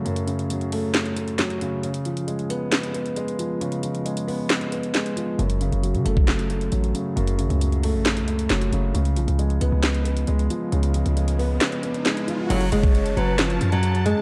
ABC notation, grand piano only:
X:1
M:4/4
L:1/8
Q:1/4=135
K:F#m
V:1 name="Grand piano" clef=bass
[F,,C,F,A,] C, F, A,2 A, F, C, | C, ^E, G, B,2 B, G, E, | C, ^E, G, B,2 B, G, E, | F,, C, F, A,2 A, F, C, |
F,, C, F, A,2 A, F, C, | C, ^E, G, B,2 B, G, E, | C, ^E, G, B,2 B, G, E, | z8 |]